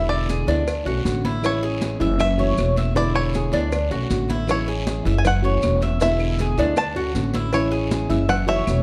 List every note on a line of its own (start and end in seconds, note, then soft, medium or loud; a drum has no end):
0.00 0.41 E1 loud
0.00 0.46 B2 medium
0.00 0.46 D3 medium
0.00 0.46 G#3 medium
0.00 0.47 B3 medium
0.00 0.27 E4 medium
0.00 0.47 E4 medium
0.09 0.82 D5 medium
0.09 high conga soft
0.09 claves medium
0.09 maracas soft
0.29 0.47 G#4 medium
0.29 cowbell medium
0.29 high conga medium
0.29 short guiro medium
0.29 maracas medium
0.47 0.83 D2 loud
0.47 0.65 D3 medium
0.47 0.66 G#3 medium
0.47 0.66 B3 medium
0.47 0.85 D4 loud
0.47 0.66 E4 medium
0.47 cowbell medium
0.47 high conga soft
0.47 short guiro medium
0.47 maracas soft
0.66 muted nylon-string guitar stroke medium
0.66 cowbell loud
0.66 high conga soft
0.66 long guiro medium
0.66 claves medium
0.66 maracas medium
0.85 1.03 B1 medium
0.85 1.03 A3 medium
0.85 1.04 C#4 medium
0.85 1.04 F#4 medium
0.85 1.23 F#4 medium
0.85 high conga soft
0.85 maracas soft
1.04 1.94 A1 medium
1.04 1.42 D3 medium
1.04 1.42 A3 medium
1.04 1.42 C#4 medium
1.04 1.43 F#4 medium
1.04 cowbell medium
1.04 high conga medium
1.04 short guiro medium
1.04 maracas medium
1.24 1.61 E4 loud
1.24 cowbell medium
1.24 high conga loud
1.24 short guiro medium
1.24 maracas soft
1.42 1.99 E3 medium
1.42 1.99 G#3 medium
1.42 2.00 C#4 medium
1.42 1.99 E4 medium
1.42 1.98 C#5 loud
1.42 cowbell loud
1.42 long guiro medium
1.42 claves medium
1.42 maracas medium
1.62 2.00 G#4 medium
1.62 high conga soft
1.62 maracas soft
1.81 cowbell medium
1.81 high conga loud
1.81 short guiro medium
1.81 maracas medium
2.00 2.53 F#1 loud
2.00 2.19 G#3 medium
2.00 2.18 C#4 medium
2.00 2.18 E4 medium
2.00 2.38 E5 medium
2.00 high conga soft
2.00 short guiro medium
2.00 maracas soft
2.19 2.99 E5 loud
2.19 muted nylon-string guitar stroke medium
2.19 cowbell loud
2.19 high conga soft
2.19 low conga loud
2.19 long guiro medium
2.19 claves medium
2.19 maracas medium
2.38 2.56 E3 medium
2.38 2.56 A3 medium
2.38 2.57 C#4 medium
2.38 2.56 F#4 medium
2.38 2.76 C#5 medium
2.38 high conga soft
2.38 low conga medium
2.38 maracas soft
2.57 3.47 E1 medium
2.57 2.94 E3 medium
2.57 2.95 A3 medium
2.57 2.95 C#4 medium
2.57 2.95 F#4 medium
2.57 cowbell medium
2.57 high conga medium
2.57 short guiro medium
2.57 claves medium
2.57 maracas medium
2.76 2.96 E5 medium
2.76 cowbell medium
2.76 high conga medium
2.76 short guiro medium
2.76 maracas soft
2.95 3.52 B2 medium
2.95 3.52 D3 medium
2.95 3.52 G#3 medium
2.95 3.52 B3 medium
2.95 3.51 E4 medium
2.95 3.33 E4 medium
2.95 3.14 D5 loud
2.95 cowbell loud
2.95 long guiro medium
2.95 maracas medium
3.15 3.87 C#5 medium
3.15 high conga soft
3.15 claves medium
3.15 maracas soft
3.33 3.53 G#4 medium
3.33 cowbell medium
3.33 high conga medium
3.33 short guiro medium
3.33 maracas medium
3.52 3.88 D2 loud
3.52 3.71 D3 medium
3.52 3.72 G#3 medium
3.52 3.72 B3 medium
3.52 3.90 D4 loud
3.52 3.71 E4 medium
3.52 cowbell medium
3.52 high conga soft
3.52 short guiro medium
3.52 maracas soft
3.70 muted nylon-string guitar stroke medium
3.70 cowbell loud
3.70 high conga soft
3.70 long guiro medium
3.70 claves medium
3.70 maracas medium
3.91 4.09 B1 medium
3.91 4.09 A3 medium
3.91 4.09 C#4 medium
3.91 4.09 F#4 medium
3.91 4.28 F#4 medium
3.91 high conga soft
3.91 maracas soft
4.10 4.99 A1 medium
4.10 4.47 D3 medium
4.10 4.47 A3 medium
4.10 4.47 C#4 medium
4.10 4.48 F#4 medium
4.10 cowbell medium
4.10 high conga medium
4.10 short guiro medium
4.10 maracas medium
4.28 4.67 E4 medium
4.28 cowbell medium
4.28 high conga medium
4.28 short guiro medium
4.28 maracas soft
4.47 5.04 E3 medium
4.47 5.04 G#3 medium
4.47 5.04 C#4 medium
4.47 5.04 E4 medium
4.47 5.03 C#5 medium
4.47 cowbell loud
4.47 long guiro medium
4.47 claves medium
4.47 maracas medium
4.68 5.05 G#4 medium
4.68 high conga soft
4.68 maracas soft
4.86 cowbell medium
4.86 high conga loud
4.86 short guiro medium
4.86 maracas medium
5.05 5.59 F#1 loud
5.05 5.24 G#3 medium
5.05 5.24 C#4 medium
5.05 5.24 E4 medium
5.05 5.43 E5 medium
5.05 high conga soft
5.05 short guiro medium
5.05 maracas soft
5.18 5.25 G#5 medium
5.23 5.98 F#5 loud
5.23 muted nylon-string guitar stroke medium
5.23 cowbell loud
5.23 high conga soft
5.23 low conga medium
5.23 long guiro medium
5.23 claves medium
5.23 maracas medium
5.42 5.62 E3 medium
5.42 5.62 A3 medium
5.42 5.62 C#4 medium
5.42 5.61 F#4 medium
5.42 5.81 C#5 medium
5.42 maracas soft
5.62 6.52 E1 medium
5.62 6.00 E3 medium
5.62 6.00 A3 soft
5.62 6.01 C#4 medium
5.62 6.01 F#4 medium
5.62 cowbell medium
5.62 high conga loud
5.62 short guiro medium
5.62 claves medium
5.62 maracas medium
5.81 6.01 E5 medium
5.81 cowbell medium
5.81 high conga medium
5.81 short guiro medium
5.81 maracas soft
6.00 6.57 B2 medium
6.00 6.58 D3 medium
6.00 6.58 G#3 medium
6.00 6.57 B3 medium
6.00 6.38 E4 medium
6.00 6.57 E4 medium
6.00 6.55 E5 loud
6.00 cowbell loud
6.00 high conga soft
6.00 long guiro medium
6.00 maracas medium
6.19 high conga soft
6.19 claves medium
6.19 maracas soft
6.38 6.58 G#4 medium
6.38 cowbell medium
6.38 high conga medium
6.38 short guiro medium
6.38 maracas medium
6.57 7.11 D2 loud
6.57 6.76 D3 medium
6.57 6.77 G#3 medium
6.57 6.76 B3 medium
6.57 6.95 D4 loud
6.57 6.76 E4 medium
6.57 cowbell medium
6.57 high conga soft
6.57 short guiro medium
6.57 maracas soft
6.76 7.50 A5 loud
6.76 muted nylon-string guitar stroke medium
6.76 cowbell loud
6.76 high conga soft
6.76 long guiro medium
6.76 claves medium
6.76 maracas medium
6.96 7.13 A3 medium
6.96 7.14 C#4 medium
6.96 7.14 F#4 medium
6.96 7.33 F#4 medium
6.96 high conga soft
6.96 maracas soft
7.14 8.04 A1 medium
7.14 7.52 D3 medium
7.14 7.52 A3 medium
7.14 7.52 C#4 medium
7.14 7.53 F#4 medium
7.14 cowbell medium
7.14 high conga medium
7.14 short guiro medium
7.14 maracas medium
7.34 7.71 E4 loud
7.34 cowbell medium
7.34 high conga medium
7.34 short guiro medium
7.34 maracas soft
7.53 8.09 E3 medium
7.53 8.10 G#3 medium
7.53 8.10 C#4 medium
7.53 8.08 E4 medium
7.53 8.32 C#5 loud
7.53 cowbell loud
7.53 high conga soft
7.53 long guiro medium
7.53 claves medium
7.53 maracas medium
7.71 8.09 G#4 medium
7.71 high conga soft
7.71 maracas soft
7.91 cowbell medium
7.91 high conga loud
7.91 short guiro medium
7.91 maracas medium
8.09 8.63 F#1 loud
8.09 8.28 G#3 medium
8.09 8.28 C#4 medium
8.09 8.28 E4 medium
8.09 8.47 E5 medium
8.09 high conga soft
8.09 short guiro medium
8.09 maracas soft
8.28 8.48 F#5 loud
8.28 muted nylon-string guitar stroke medium
8.28 cowbell loud
8.28 high conga soft
8.28 low conga medium
8.28 long guiro medium
8.28 claves medium
8.28 maracas medium
8.47 8.66 E3 medium
8.47 8.66 A3 medium
8.47 8.66 C#4 medium
8.47 8.66 F#4 medium
8.47 8.83 C#5 medium
8.47 8.83 E5 loud
8.47 high conga soft
8.47 low conga medium
8.47 maracas soft
8.67 8.83 E1 medium
8.67 8.83 E3 medium
8.67 8.83 A3 medium
8.67 8.83 C#4 medium
8.67 8.83 F#4 medium
8.67 cowbell medium
8.67 high conga medium
8.67 short guiro medium
8.67 claves medium
8.67 maracas medium